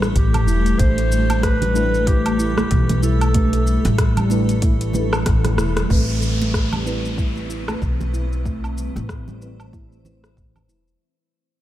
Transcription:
Already playing: A1 G3 A3 A4
0.02 cross-stick, shaker
0.16 A1 E3 G4, kick, closed hi-hat, shaker
0.34 closed hi-hat, low conga, low woodblock, shaker
0.47 E1 E4, high conga, shaker
0.66 closed hi-hat, shaker
0.77 A1 A3 D4 G4 A4 C5, kick, closed hi-hat, shaker
0.81 A4
0.98 closed hi-hat, shaker
1.11 G3, shaker
1.30 closed hi-hat, muted conga, low woodblock, shaker
1.43 B4, kick, cross-stick, closed hi-hat, shaker
1.62 G3, closed hi-hat, low conga, shaker
1.74 A3 D4 E4 G4 B4, shaker
1.94 shaker
2.07 E4 G4, kick, closed hi-hat, shaker
2.25 closed hi-hat, high conga, low woodblock, shaker
2.39 E4, shaker
2.58 cross-stick, high conga, shaker
2.71 B1 E3, kick, closed hi-hat, shaker
2.89 closed hi-hat, muted conga, low conga, shaker
3.03 E4 A4, shaker
3.21 closed hi-hat, low woodblock, shaker
3.34 A3 D4 G4 B4, kick, closed hi-hat, high conga, shaker
3.53 closed hi-hat, shaker
3.66 G3, high conga, shaker
3.85 A1, closed hi-hat, muted conga, shaker
3.98 kick, cross-stick, closed hi-hat, shaker
4.17 G3, closed hi-hat, low conga, low woodblock, shaker
4.29 A3 D4 E4 G4 B4, muted conga, shaker
4.49 closed hi-hat, shaker
4.62 E4, kick, closed hi-hat, high conga, shaker
4.81 closed hi-hat, shaker
4.93 A3 D4 E4 G4 B4, high conga, low conga, shaker
5.13 cross-stick, low woodblock, shaker
5.26 A1 E3, kick, cross-stick, closed hi-hat, shaker
5.45 cross-stick, closed hi-hat, low conga, shaker
5.58 E1 E4, cross-stick, high conga, shaker
5.77 cross-stick, closed hi-hat, shaker
5.88 A1 A3 C4 E4 B4, kick, downlifter, shaker
6.09 shaker
6.22 G3, shaker
6.41 muted conga, shaker
6.54 kick, cross-stick, shaker
6.73 G3, low conga, low woodblock, shaker
6.85 A3 C4 E4 B4, shaker
7.05 shaker
7.18 E4, kick, shaker
7.36 high conga, shaker
7.50 E4, shaker
7.68 cross-stick, high conga, low woodblock, shaker
7.82 B1 E3, kick, shaker
8.00 muted conga, low conga, shaker
8.14 E4, shaker
8.33 shaker
8.44 A3 C4 E4 B4 C5, kick, shaker
8.64 low woodblock, shaker
8.78 G3, shaker
8.96 A1, muted conga, shaker
9.09 kick, cross-stick, shaker
9.28 G3, low conga, shaker
9.40 A3 C4 E4 B4, shaker
9.60 low woodblock, shaker
9.73 E4, kick, high conga, shaker
9.92 shaker
10.04 A3 C4 E4 B4, high conga, low conga, shaker
10.24 cross-stick, shaker
10.37 A1 E3, kick, shaker
10.56 low conga, low woodblock, shaker
10.68 E1 E4, high conga, shaker
10.88 shaker

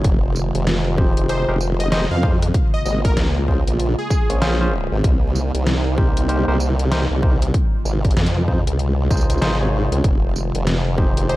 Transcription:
Already playing: C3 G#3
0.04 F1 D#3 F4, kick, closed hi-hat
0.36 tambourine
0.55 F1, closed hi-hat
0.67 snare, closed hi-hat
0.98 D#4 G4 G#4 C5, kick
1.17 F1, closed hi-hat
1.29 D#4 G4 G#4 C5, closed hi-hat
1.48 F1 D#4 G4 G#4 A#4, cross-stick
1.61 tambourine
1.80 D#5, closed hi-hat
1.92 D#4 G4 G#4 C5 D#5, snare, closed hi-hat
2.11 F2 F5
2.23 D#4 G4 G#4 C5, kick
2.42 cross-stick, closed hi-hat
2.54 C#3 A#3 F4, kick, closed hi-hat
2.74 D#5
2.85 G#1 D#5, tambourine
3.05 A#4, kick, closed hi-hat
3.17 C#2, snare, closed hi-hat
3.48 C#4 F4 G#4 C5, kick
3.67 A#1, closed hi-hat
3.80 closed hi-hat
3.98 G#4
4.10 kick, tambourine
4.29 A#1 C#4 F4 G#4 C#5, closed hi-hat
4.42 C#4 F4 G#4 C5, snare, closed hi-hat
4.61 C#4 F4 G#4 C5
4.92 G#1
5.04 C2 C3 G3 A#3 D#4, kick, closed hi-hat
5.35 tambourine
5.54 C2, closed hi-hat
5.67 snare, closed hi-hat
5.98 D#4 G4 A#4 C5, kick
6.17 C2, closed hi-hat
6.29 D#4 G4 A#4 C5, closed hi-hat
6.48 C2 D#4 G4 A#4 C5, cross-stick
6.60 tambourine
6.79 closed hi-hat
6.91 D#4 G4 A#4 C5, snare, closed hi-hat
7.11 C2
7.23 D#4 G4 A#4 C5, kick
7.42 cross-stick, closed hi-hat
7.54 C3 C#3 G#3 F4, kick, closed hi-hat
7.85 G#1, tambourine
8.05 kick, closed hi-hat
8.11 closed hi-hat
8.16 F2, snare, closed hi-hat
8.26 closed hi-hat
8.48 D#4 F4 G#4 C5, kick
8.67 C#2, closed hi-hat
8.79 closed hi-hat
9.10 C#2 D#4 F4 G#4 C5, kick, tambourine
9.17 tambourine
9.21 tambourine
9.30 C#2, closed hi-hat, tambourine
9.31 tambourine
9.38 G#1 D#4 F4 G#4 C5, tambourine
9.42 snare, closed hi-hat
9.61 D#4 F4 G#4 C#5
9.92 C#2, closed hi-hat
10.04 F1 D#3, kick, closed hi-hat
10.36 tambourine
10.55 F1, closed hi-hat
10.67 snare, closed hi-hat
10.98 D#4 G4 G#4 C5, kick
11.17 F1, closed hi-hat
11.29 D#4 G4 G#4 C5, closed hi-hat

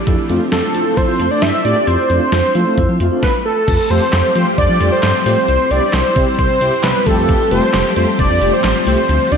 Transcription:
Already playing: F3 A3
0.07 F2 C4 E4, kick, closed hi-hat
0.29 F2 A3 C4 D4 F4, closed hi-hat
0.41 C4
0.52 F2 A4, snare, closed hi-hat
0.63 D4
0.75 F3 A3 C4 E4 F4, closed hi-hat
0.86 A3 C4 F4
0.97 F2 E4 C5, kick, closed hi-hat
1.08 F3 C4
1.20 F2 A3 C4 F4, closed hi-hat
1.31 A3 C4 D4 D5
1.42 G2 E4 E5, snare, closed hi-hat
1.65 A2 A3 C4 G4 D5, closed hi-hat
1.76 G4
1.87 F2 E4 C5, closed hi-hat
2.10 F2 A3 C4 D4 F4, closed hi-hat
2.21 C4
2.32 F2, snare, closed hi-hat
2.44 D4
2.55 F3 A3 C4 E4 F4, closed hi-hat
2.66 A3 C4 F4
2.78 F2 E4, kick, closed hi-hat
2.89 F3 C4
3.00 F2 A3 C4 F4, closed hi-hat
3.11 A3 C4 D4 F4
3.23 B4, kick, snare
3.45 A4
3.68 F2 F3 G3 A3 C4 G4, kick, closed hi-hat, crash
3.90 F2 A3 F4 G4 C5, closed hi-hat
4.13 F2, snare, clap, closed hi-hat
4.35 F3 A3 F4 G4 C5, closed hi-hat
4.58 F2 D5, kick, closed hi-hat
4.69 F3
4.81 F2 A3 F4 G4, closed hi-hat
4.92 C5
5.03 G2, snare, clap, closed hi-hat
5.26 A2 A3 F4 G4 C5, open hi-hat
5.48 C2 G3 E4, closed hi-hat
5.71 C2 C4 E4 G4 D5, closed hi-hat
5.93 C2 C5, snare, clap, closed hi-hat
6.16 C3 C4 E4 G4, kick, closed hi-hat
6.39 C2 C5, kick, closed hi-hat
6.50 C3
6.61 C2 C4 E4 G4, closed hi-hat
6.84 C2 B4, snare, clap, closed hi-hat
7.06 F2 F3 A3 C4 F4 G4 A4, kick, open hi-hat
7.29 kick, closed hi-hat
7.51 F1 A3 F4 G4 C5, closed hi-hat
7.74 F1, snare, clap, closed hi-hat
7.96 F2 A3 F4 A4 C5, closed hi-hat
8.19 F1 D5, kick, closed hi-hat
8.30 F2
8.41 F1 A3 F4 G4, closed hi-hat
8.53 C5
8.64 A1, snare, clap, closed hi-hat
8.87 C2 A3 F4 G4 C5, open hi-hat
9.09 D2 D3 F4, closed hi-hat
9.32 D2 C4 D4 F4 D5, closed hi-hat

